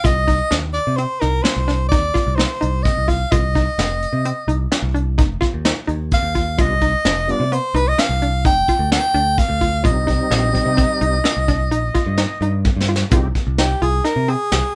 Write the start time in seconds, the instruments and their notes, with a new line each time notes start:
0.04 picked electric bass C2, synth arpeggio sound F4, soprano saxophone D#5, kick, closed hi-hat
0.28 synth arpeggio sound D#4, kick, closed hi-hat
0.51 picked electric bass D#2, synth arpeggio sound D4, snare, closed hi-hat
0.73 soprano saxophone D5, closed hi-hat
0.87 picked electric bass C3
0.96 synth arpeggio sound C4, soprano saxophone C5, closed hi-hat
1.20 picked electric bass C2, synth arpeggio sound D#4, soprano saxophone A#4, snare, closed hi-hat
1.43 synth arpeggio sound D4, soprano saxophone C5, snare, closed hi-hat
1.56 picked electric bass C2
1.68 synth arpeggio sound D4, snare, closed hi-hat
1.89 picked electric bass D#2, synth arpeggio sound D#4, soprano saxophone D5, kick, closed hi-hat
2.14 synth arpeggio sound F4, kick, closed hi-hat
2.27 picked electric bass C2
2.36 synth arpeggio sound D#4, soprano saxophone C5, snare, closed hi-hat
2.61 picked electric bass C2, synth arpeggio sound D#4, closed hi-hat
2.83 soprano saxophone D#5, kick, closed hi-hat
2.97 picked electric bass C2
3.08 synth arpeggio sound F4, soprano saxophone F5, kick, closed hi-hat
3.31 picked electric bass C2, synth arpeggio sound F4, soprano saxophone D#5, kick, closed hi-hat
3.55 synth arpeggio sound D#4, kick, closed hi-hat
3.78 picked electric bass F1, synth arpeggio sound D3, snare, closed hi-hat
4.02 closed hi-hat
4.13 picked electric bass C3
4.25 synth arpeggio sound C4, closed hi-hat
4.48 picked electric bass C2, synth arpeggio sound D#4, closed hi-hat
4.72 synth arpeggio sound D4, snare, closed hi-hat
4.82 picked electric bass C2
4.94 synth arpeggio sound D4, closed hi-hat
5.18 picked electric bass F1, synth arpeggio sound D#4, kick, closed hi-hat
5.41 synth arpeggio sound F4, kick, snare, closed hi-hat
5.54 picked electric bass D#2
5.65 synth arpeggio sound D#4, snare, closed hi-hat
5.87 picked electric bass D#2, synth arpeggio sound D#4, closed hi-hat
6.11 soprano saxophone F5, kick, closed hi-hat
6.23 picked electric bass D#2
6.35 synth arpeggio sound F4, kick, closed hi-hat
6.57 picked electric bass C2, tonewheel organ G3 B3 D4 F4, synth arpeggio sound F4, soprano saxophone D#5, kick, closed hi-hat
6.81 synth arpeggio sound D#4, kick, closed hi-hat
7.05 picked electric bass F1, synth arpeggio sound D4, snare, closed hi-hat
7.27 tonewheel organ G3 B3 D4 F4, closed hi-hat
7.31 soprano saxophone D5
7.40 picked electric bass C3
7.52 synth arpeggio sound B3, soprano saxophone C5, closed hi-hat
7.74 picked electric bass C2, synth arpeggio sound D#4, soprano saxophone B4, closed hi-hat
7.88 soprano saxophone D#5
7.98 synth arpeggio sound D4, soprano saxophone F5, snare, closed hi-hat
8.09 picked electric bass C2
8.22 synth arpeggio sound D4, closed hi-hat
8.45 picked electric bass F1, synth arpeggio sound D#4, soprano saxophone G5, kick, closed hi-hat
8.68 synth arpeggio sound F4, kick, closed hi-hat
8.79 picked electric bass D2
8.92 synth arpeggio sound D4, soprano saxophone G5, snare, closed hi-hat
9.14 picked electric bass D2, synth arpeggio sound D4, closed hi-hat
9.38 soprano saxophone F5, kick, closed hi-hat
9.49 picked electric bass D2
9.61 synth arpeggio sound F4, kick, closed hi-hat
9.83 picked electric bass C2, tonewheel organ G3 C4 D#4, synth arpeggio sound F4, soprano saxophone D#5, kick, closed hi-hat
10.07 synth arpeggio sound D#4, kick, closed hi-hat
10.31 picked electric bass A#1, synth arpeggio sound D3, snare, closed hi-hat
10.52 tonewheel organ G3 C4 D#4, kick, closed hi-hat
10.66 picked electric bass C3
10.77 synth arpeggio sound C4, kick, closed hi-hat
11.01 picked electric bass C2, synth arpeggio sound D#4, closed hi-hat
11.24 synth arpeggio sound D4, snare, closed hi-hat
11.37 picked electric bass C2
11.48 synth arpeggio sound D4, kick, closed hi-hat
11.71 picked electric bass A#1, synth arpeggio sound D#4, closed hi-hat
11.94 synth arpeggio sound F4, kick, closed hi-hat
12.06 picked electric bass G2
12.18 synth arpeggio sound D#4, snare, closed hi-hat
12.41 picked electric bass G2, synth arpeggio sound D#4, closed hi-hat
12.65 kick, high tom
12.76 picked electric bass G2
12.81 snare
12.89 synth arpeggio sound F4
12.96 snare
13.10 picked electric bass C2, tonewheel organ G#3 C4 D#4 G4, synth arpeggio sound F4, kick, closed hi-hat
13.35 kick, closed hi-hat
13.47 picked electric bass C2
13.58 synth arpeggio sound D#4, soprano saxophone G4, snare, closed hi-hat
13.82 picked electric bass C2, synth arpeggio sound F4, soprano saxophone G#4, closed hi-hat
14.04 synth arpeggio sound D#4, soprano saxophone A#4, snare, closed hi-hat
14.16 picked electric bass C3
14.28 synth arpeggio sound C4, soprano saxophone G#4, closed hi-hat
14.52 picked electric bass C2, synth arpeggio sound G4, snare, closed hi-hat